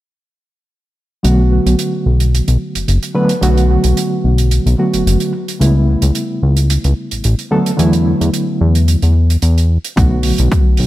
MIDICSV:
0, 0, Header, 1, 4, 480
1, 0, Start_track
1, 0, Key_signature, 2, "minor"
1, 0, Tempo, 545455
1, 1093, Time_signature, 4, 2, 24, 8
1, 9563, End_track
2, 0, Start_track
2, 0, Title_t, "Reed electric piano"
2, 0, Program_c, 0, 4
2, 1084, Note_on_c, 0, 50, 71
2, 1089, Note_on_c, 0, 54, 67
2, 1093, Note_on_c, 0, 57, 67
2, 1095, Note_on_c, 0, 59, 67
2, 1101, Note_on_c, 0, 66, 80
2, 2741, Note_off_c, 0, 50, 0
2, 2744, Note_off_c, 0, 54, 0
2, 2746, Note_off_c, 0, 57, 0
2, 2747, Note_off_c, 0, 59, 0
2, 2750, Note_off_c, 0, 66, 0
2, 2767, Note_on_c, 0, 50, 86
2, 2768, Note_on_c, 0, 54, 76
2, 2770, Note_on_c, 0, 57, 78
2, 2773, Note_on_c, 0, 59, 76
2, 2775, Note_on_c, 0, 71, 94
2, 2935, Note_off_c, 0, 50, 0
2, 2936, Note_off_c, 0, 54, 0
2, 2937, Note_off_c, 0, 57, 0
2, 2938, Note_off_c, 0, 59, 0
2, 2940, Note_off_c, 0, 71, 0
2, 3003, Note_on_c, 0, 50, 83
2, 3007, Note_on_c, 0, 54, 75
2, 3013, Note_on_c, 0, 57, 77
2, 3015, Note_on_c, 0, 59, 74
2, 3020, Note_on_c, 0, 66, 91
2, 4181, Note_off_c, 0, 50, 0
2, 4183, Note_off_c, 0, 54, 0
2, 4186, Note_off_c, 0, 57, 0
2, 4187, Note_off_c, 0, 59, 0
2, 4190, Note_off_c, 0, 66, 0
2, 4210, Note_on_c, 0, 50, 66
2, 4211, Note_on_c, 0, 54, 61
2, 4214, Note_on_c, 0, 57, 61
2, 4216, Note_on_c, 0, 59, 59
2, 4219, Note_on_c, 0, 66, 72
2, 4678, Note_off_c, 0, 50, 0
2, 4679, Note_off_c, 0, 54, 0
2, 4680, Note_off_c, 0, 57, 0
2, 4681, Note_off_c, 0, 59, 0
2, 4683, Note_off_c, 0, 66, 0
2, 4923, Note_on_c, 0, 49, 76
2, 4928, Note_on_c, 0, 55, 69
2, 4932, Note_on_c, 0, 57, 69
2, 4937, Note_on_c, 0, 59, 67
2, 4942, Note_on_c, 0, 64, 79
2, 6581, Note_off_c, 0, 49, 0
2, 6584, Note_off_c, 0, 55, 0
2, 6586, Note_off_c, 0, 57, 0
2, 6588, Note_off_c, 0, 59, 0
2, 6591, Note_off_c, 0, 64, 0
2, 6607, Note_on_c, 0, 50, 84
2, 6611, Note_on_c, 0, 54, 80
2, 6611, Note_on_c, 0, 57, 76
2, 6613, Note_on_c, 0, 59, 76
2, 6615, Note_on_c, 0, 69, 90
2, 6776, Note_off_c, 0, 50, 0
2, 6777, Note_off_c, 0, 57, 0
2, 6778, Note_off_c, 0, 54, 0
2, 6779, Note_off_c, 0, 59, 0
2, 6779, Note_off_c, 0, 69, 0
2, 6836, Note_on_c, 0, 50, 81
2, 6841, Note_on_c, 0, 54, 77
2, 6848, Note_on_c, 0, 57, 76
2, 6849, Note_on_c, 0, 59, 74
2, 6856, Note_on_c, 0, 64, 94
2, 8018, Note_off_c, 0, 50, 0
2, 8020, Note_off_c, 0, 54, 0
2, 8024, Note_off_c, 0, 57, 0
2, 8024, Note_off_c, 0, 59, 0
2, 8028, Note_off_c, 0, 64, 0
2, 8766, Note_on_c, 0, 50, 75
2, 8771, Note_on_c, 0, 54, 67
2, 8774, Note_on_c, 0, 57, 68
2, 8779, Note_on_c, 0, 59, 70
2, 8784, Note_on_c, 0, 66, 81
2, 9563, Note_off_c, 0, 50, 0
2, 9563, Note_off_c, 0, 54, 0
2, 9563, Note_off_c, 0, 57, 0
2, 9563, Note_off_c, 0, 59, 0
2, 9563, Note_off_c, 0, 66, 0
2, 9563, End_track
3, 0, Start_track
3, 0, Title_t, "Analog synth bass"
3, 0, Program_c, 1, 38
3, 1094, Note_on_c, 1, 35, 93
3, 1408, Note_off_c, 1, 35, 0
3, 1463, Note_on_c, 1, 35, 100
3, 1545, Note_off_c, 1, 35, 0
3, 1813, Note_on_c, 1, 35, 78
3, 2127, Note_off_c, 1, 35, 0
3, 2181, Note_on_c, 1, 35, 91
3, 2264, Note_off_c, 1, 35, 0
3, 2420, Note_on_c, 1, 30, 41
3, 2511, Note_off_c, 1, 30, 0
3, 2534, Note_on_c, 1, 30, 81
3, 2628, Note_off_c, 1, 30, 0
3, 3012, Note_on_c, 1, 35, 90
3, 3327, Note_off_c, 1, 35, 0
3, 3384, Note_on_c, 1, 35, 97
3, 3465, Note_off_c, 1, 35, 0
3, 3733, Note_on_c, 1, 35, 79
3, 4047, Note_off_c, 1, 35, 0
3, 4102, Note_on_c, 1, 35, 89
3, 4184, Note_off_c, 1, 35, 0
3, 4342, Note_on_c, 1, 30, 39
3, 4432, Note_off_c, 1, 30, 0
3, 4456, Note_on_c, 1, 30, 84
3, 4549, Note_off_c, 1, 30, 0
3, 4935, Note_on_c, 1, 37, 93
3, 5248, Note_off_c, 1, 37, 0
3, 5299, Note_on_c, 1, 37, 98
3, 5383, Note_off_c, 1, 37, 0
3, 5655, Note_on_c, 1, 37, 81
3, 5968, Note_off_c, 1, 37, 0
3, 6024, Note_on_c, 1, 37, 88
3, 6105, Note_off_c, 1, 37, 0
3, 6267, Note_on_c, 1, 33, 41
3, 6354, Note_off_c, 1, 33, 0
3, 6377, Note_on_c, 1, 33, 82
3, 6469, Note_off_c, 1, 33, 0
3, 6853, Note_on_c, 1, 40, 93
3, 7167, Note_off_c, 1, 40, 0
3, 7224, Note_on_c, 1, 40, 99
3, 7305, Note_off_c, 1, 40, 0
3, 7576, Note_on_c, 1, 40, 81
3, 7888, Note_off_c, 1, 40, 0
3, 7944, Note_on_c, 1, 40, 74
3, 8248, Note_off_c, 1, 40, 0
3, 8295, Note_on_c, 1, 40, 87
3, 8608, Note_off_c, 1, 40, 0
3, 8776, Note_on_c, 1, 35, 93
3, 9088, Note_off_c, 1, 35, 0
3, 9145, Note_on_c, 1, 35, 96
3, 9226, Note_off_c, 1, 35, 0
3, 9497, Note_on_c, 1, 35, 79
3, 9563, Note_off_c, 1, 35, 0
3, 9563, End_track
4, 0, Start_track
4, 0, Title_t, "Drums"
4, 1095, Note_on_c, 9, 42, 64
4, 1183, Note_off_c, 9, 42, 0
4, 1465, Note_on_c, 9, 42, 55
4, 1553, Note_off_c, 9, 42, 0
4, 1573, Note_on_c, 9, 42, 65
4, 1661, Note_off_c, 9, 42, 0
4, 1937, Note_on_c, 9, 42, 59
4, 2025, Note_off_c, 9, 42, 0
4, 2065, Note_on_c, 9, 42, 67
4, 2153, Note_off_c, 9, 42, 0
4, 2181, Note_on_c, 9, 42, 51
4, 2269, Note_off_c, 9, 42, 0
4, 2423, Note_on_c, 9, 42, 62
4, 2511, Note_off_c, 9, 42, 0
4, 2536, Note_on_c, 9, 42, 72
4, 2624, Note_off_c, 9, 42, 0
4, 2663, Note_on_c, 9, 42, 50
4, 2751, Note_off_c, 9, 42, 0
4, 2897, Note_on_c, 9, 42, 55
4, 2985, Note_off_c, 9, 42, 0
4, 3015, Note_on_c, 9, 42, 66
4, 3103, Note_off_c, 9, 42, 0
4, 3146, Note_on_c, 9, 42, 43
4, 3234, Note_off_c, 9, 42, 0
4, 3376, Note_on_c, 9, 42, 55
4, 3464, Note_off_c, 9, 42, 0
4, 3494, Note_on_c, 9, 42, 69
4, 3582, Note_off_c, 9, 42, 0
4, 3857, Note_on_c, 9, 42, 61
4, 3945, Note_off_c, 9, 42, 0
4, 3971, Note_on_c, 9, 42, 65
4, 4059, Note_off_c, 9, 42, 0
4, 4106, Note_on_c, 9, 42, 41
4, 4194, Note_off_c, 9, 42, 0
4, 4343, Note_on_c, 9, 42, 57
4, 4431, Note_off_c, 9, 42, 0
4, 4464, Note_on_c, 9, 42, 68
4, 4552, Note_off_c, 9, 42, 0
4, 4577, Note_on_c, 9, 42, 46
4, 4665, Note_off_c, 9, 42, 0
4, 4826, Note_on_c, 9, 42, 57
4, 4914, Note_off_c, 9, 42, 0
4, 4940, Note_on_c, 9, 42, 61
4, 5028, Note_off_c, 9, 42, 0
4, 5297, Note_on_c, 9, 42, 61
4, 5385, Note_off_c, 9, 42, 0
4, 5412, Note_on_c, 9, 42, 64
4, 5500, Note_off_c, 9, 42, 0
4, 5778, Note_on_c, 9, 42, 56
4, 5866, Note_off_c, 9, 42, 0
4, 5896, Note_on_c, 9, 42, 74
4, 5984, Note_off_c, 9, 42, 0
4, 6021, Note_on_c, 9, 42, 46
4, 6109, Note_off_c, 9, 42, 0
4, 6260, Note_on_c, 9, 42, 56
4, 6348, Note_off_c, 9, 42, 0
4, 6370, Note_on_c, 9, 42, 61
4, 6458, Note_off_c, 9, 42, 0
4, 6500, Note_on_c, 9, 42, 43
4, 6588, Note_off_c, 9, 42, 0
4, 6743, Note_on_c, 9, 42, 59
4, 6831, Note_off_c, 9, 42, 0
4, 6856, Note_on_c, 9, 42, 65
4, 6944, Note_off_c, 9, 42, 0
4, 6979, Note_on_c, 9, 42, 44
4, 7067, Note_off_c, 9, 42, 0
4, 7228, Note_on_c, 9, 42, 52
4, 7316, Note_off_c, 9, 42, 0
4, 7335, Note_on_c, 9, 42, 65
4, 7423, Note_off_c, 9, 42, 0
4, 7701, Note_on_c, 9, 42, 52
4, 7789, Note_off_c, 9, 42, 0
4, 7814, Note_on_c, 9, 42, 63
4, 7902, Note_off_c, 9, 42, 0
4, 7941, Note_on_c, 9, 42, 44
4, 8029, Note_off_c, 9, 42, 0
4, 8185, Note_on_c, 9, 42, 60
4, 8273, Note_off_c, 9, 42, 0
4, 8291, Note_on_c, 9, 42, 64
4, 8379, Note_off_c, 9, 42, 0
4, 8428, Note_on_c, 9, 42, 46
4, 8516, Note_off_c, 9, 42, 0
4, 8663, Note_on_c, 9, 42, 57
4, 8751, Note_off_c, 9, 42, 0
4, 8775, Note_on_c, 9, 36, 108
4, 8776, Note_on_c, 9, 42, 69
4, 8863, Note_off_c, 9, 36, 0
4, 8864, Note_off_c, 9, 42, 0
4, 9004, Note_on_c, 9, 46, 92
4, 9092, Note_off_c, 9, 46, 0
4, 9136, Note_on_c, 9, 42, 63
4, 9224, Note_off_c, 9, 42, 0
4, 9254, Note_on_c, 9, 36, 108
4, 9257, Note_on_c, 9, 42, 59
4, 9342, Note_off_c, 9, 36, 0
4, 9345, Note_off_c, 9, 42, 0
4, 9480, Note_on_c, 9, 46, 84
4, 9563, Note_off_c, 9, 46, 0
4, 9563, End_track
0, 0, End_of_file